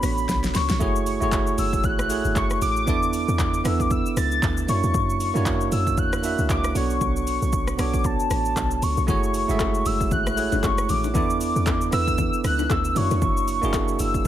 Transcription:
Already playing: B3 D4 F#4 A4 C#5 B5
0.03 A1, cross-stick, open hi-hat, shaker
0.18 shaker
0.29 B1, kick, snare, shaker
0.43 snare, shaker
0.55 C#2 C#6, snare, open hi-hat, shaker
0.69 B1, snare, shaker
0.79 F#1 A3 E4 F#4 G#4 C#5, kick, shaker
0.96 shaker
1.06 open hi-hat, shaker
1.20 F#1 A3 E4 F#4 G#4 C#5, shaker
1.32 kick, clap, shaker
1.47 shaker
1.58 F#1 E6, open hi-hat, shaker
1.73 kick, shaker
1.84 A1 F#6, kick, shaker
1.99 cross-stick, shaker
2.09 A3 E4 F#4 G#4 C#5, open hi-hat, shaker
2.25 F#1, shaker
2.36 F#1 C#6, kick, clap, shaker
2.50 cross-stick, shaker
2.61 A1 D6, open hi-hat, shaker
2.76 shaker
2.86 E2 B3 D4 E4 A4 D5, kick, shaker
3.03 shaker
3.13 open hi-hat, shaker
3.28 E2, shaker
3.39 kick, clap, shaker
3.54 shaker
3.64 E2 B3 D4 E4 A4 B4 E6, cross-stick, open hi-hat, shaker
3.80 D6, kick, shaker
3.91 E6, kick, shaker
4.06 shaker
4.17 C#2 A6, cross-stick, open hi-hat, shaker
4.32 shaker
4.43 D2, kick, clap, shaker
4.57 shaker
4.67 F#2 A#3 D4 E4 F#4 C#5 C#6, open hi-hat, shaker
4.83 E2, shaker
4.94 F#2, kick, shaker
5.10 shaker
5.20 open hi-hat, shaker
5.34 F#2 A#3 D4 E4 F#4 C#5, shaker
5.46 kick, clap, shaker
5.61 shaker
5.72 F#2 E6, open hi-hat, shaker
5.87 kick, shaker
5.97 E2 F#6, kick, shaker
6.13 cross-stick, shaker
6.22 A#3 D4 E4 F#4 E5, open hi-hat, shaker
6.38 C#2, shaker
6.49 C#2 D6, kick, clap, shaker
6.64 cross-stick, shaker
6.74 B1 B3 D4 F#4 A4 C#5 C#6, open hi-hat, shaker
6.90 shaker
7.01 B1, kick, shaker
7.16 shaker
7.27 open hi-hat, shaker
7.42 B1, shaker
7.53 kick, shaker
7.67 cross-stick, shaker
7.77 B1 B3 D4 F#4 A4 C#5 D6, cross-stick, open hi-hat, shaker
7.94 kick, shaker
8.04 A5, kick, shaker
8.20 shaker
8.30 A1, cross-stick, open hi-hat, shaker
8.45 shaker
8.56 B1, kick, clap, shaker
8.71 shaker
8.82 C#2 C#6, open hi-hat, shaker
8.97 B1, shaker
9.07 F#1 A3 E4 F#4 G#4 C#5, kick, low conga, shaker
9.24 shaker
9.34 open hi-hat, shaker
9.48 F#1 G#3 E4 F#4 G#4 E5, shaker
9.54 A3
9.60 kick, clap, high bongo, shaker
9.75 shaker
9.86 F#1 E6, open hi-hat, shaker
10.01 kick, shaker
10.11 A1 F#6, kick, low conga, shaker
10.27 cross-stick, shaker
10.36 A3 E4 F#4 G#4 C#5, open hi-hat, shaker
10.52 F#1, low bongo, shaker
10.63 F#1 C#6, kick, clap, high bongo, shaker
10.78 cross-stick, shaker
10.89 A1 D6, open hi-hat, low conga, shaker
11.04 low bongo, shaker
11.14 E2 B3 D4 E4 A4 D5, kick, low conga, shaker
11.30 shaker
11.41 open hi-hat, shaker
11.56 E2, shaker
11.66 kick, clap, high bongo, shaker
11.81 shaker
11.91 E2 B3 D4 E4 A4 B4 E6, cross-stick, open hi-hat, shaker
12.07 kick, shaker
12.18 kick, low conga, shaker
12.33 shaker
12.44 C#2 F#6, cross-stick, open hi-hat, shaker
12.59 low bongo, shaker
12.70 D2 E6, kick, clap, high bongo, shaker
12.85 shaker
12.95 F#2 A#3 D4 E4 F#4 C#5 C#6, open hi-hat, low conga, shaker
13.11 E2, low bongo, shaker
13.22 F#1, kick, low conga, shaker
13.37 shaker
13.48 open hi-hat, shaker
13.62 F#1 A#3 D4 E4 F#4 G#4, shaker
13.73 kick, clap, high bongo, shaker
13.88 shaker
13.99 F#1 E6, open hi-hat, shaker
14.14 kick, shaker

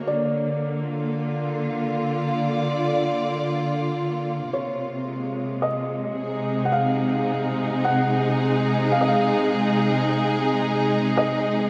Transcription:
Already playing: A#3
0.06 D3 D5
0.80 F4
2.06 D5
4.48 C3
4.53 C#5
5.02 G#3
5.62 D#5
6.12 G#4
6.27 D#4
6.65 F#5
6.72 F5
7.85 F#5
8.92 F5
9.01 D#5
9.08 F5
11.17 D#5

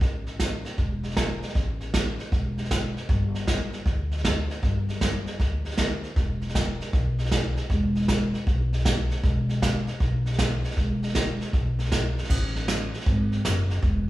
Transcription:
0.01 A1, kick, snare
0.27 snare
0.40 kick, snare, hi-hat pedal
0.65 snare
0.78 E1, kick, snare
1.03 snare
1.10 snare
1.17 kick, snare, hi-hat pedal
1.42 snare
1.49 snare
1.55 A1, kick, snare
1.81 snare
1.94 kick, snare, hi-hat pedal
2.19 snare
2.32 E1, kick, snare
2.58 snare
2.65 snare
2.71 kick, snare, hi-hat pedal
2.97 snare
3.09 G1, kick, snare
3.35 snare
3.47 kick, snare, hi-hat pedal
3.73 snare
3.86 D2, kick, snare
4.12 snare
4.18 snare
4.24 kick, snare, hi-hat pedal
4.50 snare
4.63 G1, kick, snare
4.89 snare
4.95 snare
5.01 kick, snare, hi-hat pedal
5.26 snare
5.40 D2, kick, snare
5.65 snare
5.71 snare
5.77 kick, snare, hi-hat pedal
6.04 snare
6.16 E1, kick, snare
6.42 snare
6.49 snare
6.55 kick, snare, hi-hat pedal
6.81 snare
6.93 B1, kick, snare
7.18 snare
7.25 snare
7.31 kick, snare, hi-hat pedal
7.56 snare
7.70 E1, kick, snare
7.95 snare
8.02 snare
8.08 kick, snare, hi-hat pedal
8.34 snare
8.47 B1, kick, snare
8.73 snare
8.79 snare
8.85 kick, snare, hi-hat pedal
9.10 snare
9.23 E1, kick, snare
9.49 snare
9.62 kick, snare, hi-hat pedal
9.87 snare
10.00 B1, kick, snare
10.26 snare
10.33 snare
10.39 kick, snare, hi-hat pedal
10.64 snare
10.71 snare
10.77 E1, kick, snare
11.03 snare
11.09 snare
11.15 kick, snare, hi-hat pedal
11.41 snare
11.53 B1, kick, snare
11.79 snare
11.85 snare
11.92 kick, snare, hi-hat pedal
12.18 snare
12.24 snare
12.29 A1, kick, snare, crash
12.55 snare
12.68 snare, hi-hat pedal
12.94 snare
13.01 snare
13.06 G#1, kick, snare
13.32 snare
13.45 F#1, snare, hi-hat pedal
13.70 snare
13.82 E1, kick, snare

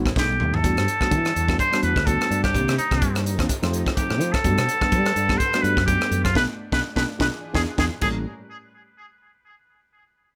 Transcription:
Already playing: A1
0.06 kick, cross-stick
0.16 B1 G3 A3 B3 D#4 G4 A4, kick, snare
0.40 D#2, mid tom
0.54 A4, floor tom
0.63 E2 E3 G3 A3 B3 D4 F#4 A4, kick, closed hi-hat
0.77 G2, cross-stick, closed hi-hat
0.88 closed hi-hat
1.01 G3 A3 B3 D4 F#4, muted fretless electric bass stroke, kick, cross-stick
1.11 E3, kick, closed hi-hat
1.25 cross-stick, closed hi-hat
1.36 E2, closed hi-hat
1.48 G3 A3 B3 D4 F#4, kick, cross-stick
1.59 D4 F#4 C5, kick, closed hi-hat
1.72 G3 A3 B3 D4 F#4, cross-stick, closed hi-hat
1.83 E2 B4, closed hi-hat
1.96 D2, kick, cross-stick
2.06 G3 A3 B3 D4 F#4 A4, kick, closed hi-hat
2.21 cross-stick, closed hi-hat
2.31 G2, closed hi-hat
2.44 G4, kick, cross-stick, closed hi-hat
2.54 C2 C3 D#3 G3 A#3 C4 D4 D#4 G4, kick, closed hi-hat
2.68 C3, cross-stick, closed hi-hat
2.78 D#4, muted fretless electric bass stroke, closed hi-hat
2.91 C2 D#3 A#3 C4 D4 F4, kick, cross-stick, closed hi-hat
3.02 G2, kick, closed hi-hat
3.14 D4 A4, cross-stick, closed hi-hat
3.26 closed hi-hat
3.39 E2 D#3 A#3 C4 D4 F4, kick, cross-stick, closed hi-hat
3.49 F3 D#4 G4 A4, muted fretless electric bass stroke, kick, closed hi-hat
3.62 F2 F3 A3 C4 D#4 F4, cross-stick, closed hi-hat
3.73 closed hi-hat
3.86 kick, cross-stick
3.97 F3 A3 C4 D#4 G4 A4, kick, closed hi-hat
4.10 A2, cross-stick
4.21 F3, closed hi-hat
4.32 A4, muted fretless electric bass stroke, kick, cross-stick, closed hi-hat
4.44 G2 G3 A3 B3 D4 F#4 B4 F#5, kick, closed hi-hat
4.58 B2, cross-stick, closed hi-hat
4.69 F#4, closed hi-hat
4.81 G3 A3 B3 D4 A4, muted fretless electric bass stroke, kick, cross-stick
4.92 G3, kick, closed hi-hat
5.06 F#4, cross-stick, closed hi-hat
5.16 G2, closed hi-hat
5.29 G3 A3 B3 D4 G4, kick, cross-stick
5.38 F#4 C5, kick, closed hi-hat
5.53 G3 A3 B3 D4 F#4, cross-stick, closed hi-hat
5.62 G2 B4, closed hi-hat
5.77 F#2, kick, cross-stick
5.86 G3 A3 B3 D4 G4 A4, kick, closed hi-hat
6.01 cross-stick, closed hi-hat
6.11 F#2, closed hi-hat
6.24 F4, kick, cross-stick, closed hi-hat
6.35 B1 A3 B3 D4 F4 B4, kick, snare
6.72 B1 B3 D4 F4 B4, kick, snare
6.96 B1 B3 D4 F4 B4, kick, snare
7.19 B1 B3 D4 F4 B4, kick, snare
7.30 E3 F4 G#4
7.54 E2 B3 D4 E4 G#4, kick, snare
7.77 E2 B3 D4 E4 G#4, kick, snare
8.01 A1 A2 G3 A#3 C#4 E4 G#4 A4 A#4, kick, crash

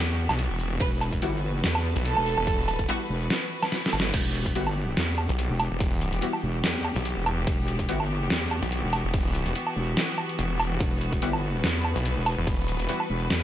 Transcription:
Already playing: E2 E3 B3 F#4 G4
0.29 B1, snare, closed hi-hat, low woodblock
0.39 closed hi-hat, ride
0.50 E1
0.60 open hi-hat
0.80 E1 B4, kick, closed hi-hat, ride
1.01 closed hi-hat, low woodblock
1.13 kick, closed hi-hat
1.22 G1 G3 B3 E4 F#4, closed hi-hat, ride
1.64 E2, snare, closed hi-hat, ride
1.75 low woodblock
1.96 B1, closed hi-hat
2.05 A4, closed hi-hat, ride
2.17 E1, low woodblock
2.26 open hi-hat
2.38 E1, low woodblock
2.47 kick, closed hi-hat, ride
2.68 closed hi-hat, low woodblock
2.79 E1, kick, closed hi-hat
2.89 G3 B3 E4 F#4, closed hi-hat, ride
3.10 E1
3.30 snare, closed hi-hat, ride
3.63 snare, closed hi-hat, low woodblock
3.72 snare, closed hi-hat, ride
3.86 snare
3.93 G1, open hi-hat, low woodblock
4.00 snare
4.14 E1 E3 B3 F#4 G4, kick, closed hi-hat, ride, crash
4.35 closed hi-hat
4.46 kick, closed hi-hat
4.55 G1 G3 B3 E4 F#4, closed hi-hat, ride
4.67 low woodblock
4.97 E2, snare, closed hi-hat, ride
5.18 low woodblock
5.29 B1, closed hi-hat
5.39 closed hi-hat, ride
5.50 E1
5.60 open hi-hat, low woodblock
5.71 E1
5.80 kick, closed hi-hat, ride
6.01 closed hi-hat
6.12 E1, closed hi-hat
6.22 G3 B3 E4 F#4, closed hi-hat, ride
6.33 low woodblock
6.43 E1
6.64 E2, snare, closed hi-hat, ride
6.85 low woodblock
6.96 B1, closed hi-hat
7.05 closed hi-hat, ride
7.17 E1
7.26 open hi-hat, low woodblock
7.47 E1, kick, closed hi-hat, ride
7.68 closed hi-hat
7.79 kick, closed hi-hat
7.89 G1 G3 B3 E4 F#4, closed hi-hat, ride
8.00 low woodblock
8.30 E2, snare, closed hi-hat, ride
8.51 low woodblock
8.62 B1, closed hi-hat
8.72 closed hi-hat, ride
8.83 E1
8.93 open hi-hat, low woodblock
9.04 E1
9.14 kick, closed hi-hat, ride
9.35 closed hi-hat
9.46 E1, closed hi-hat
9.55 closed hi-hat, ride
9.67 low woodblock
9.76 E1
9.97 snare, closed hi-hat, ride
10.18 low woodblock
10.29 closed hi-hat
10.39 E1, closed hi-hat, ride
10.60 E1, open hi-hat, low woodblock
10.80 E1 B4, kick, closed hi-hat, ride
11.01 closed hi-hat
11.13 kick, closed hi-hat
11.22 G1 G3 B3 E4 F#4, closed hi-hat, ride
11.33 low woodblock
11.64 E2, snare, closed hi-hat, ride
11.85 low woodblock
11.96 B1, closed hi-hat
12.05 closed hi-hat, ride
12.17 E1
12.26 open hi-hat, low woodblock
12.38 E1
12.47 kick, closed hi-hat, ride
12.68 closed hi-hat
12.79 E1, closed hi-hat
12.89 G3 B3 E4 F#4, closed hi-hat, ride
13.00 low woodblock
13.10 E1
13.30 E2, snare, closed hi-hat, ride

